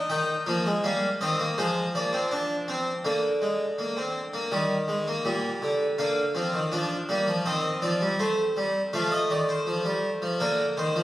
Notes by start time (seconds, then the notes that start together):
0.10 D#3 D#4 G5
0.46 F3 A#3
0.66 G#3
0.84 G3 A#3 F5
1.21 D#3 C4 D#5
1.40 A#3
1.58 F3 G#3 C5
1.95 A#3 D5
2.13 C4
2.31 D4
2.68 C4
3.05 D3 A#3
3.42 G#3
3.78 A#3
3.97 C4
4.34 A#3
4.52 D#3 G3
4.88 G#3
5.08 A#3
5.25 A#2 G3
5.62 D3
5.98 D3 A#3 F5
6.35 F3 C4
6.53 D#3
6.72 F3 D4
7.09 G3 A#3
7.27 F3
7.46 D#3 C4 D#5
7.82 F3 D5
8.01 G3
8.19 A3 C5
8.57 G3
8.93 F3 A3 F5
9.12 D#5
9.30 D#3 D5
9.49 C5
9.67 F3
9.85 G3
10.22 F3
10.40 D3 A#3 A#4
10.77 D#3 C5
10.96 F3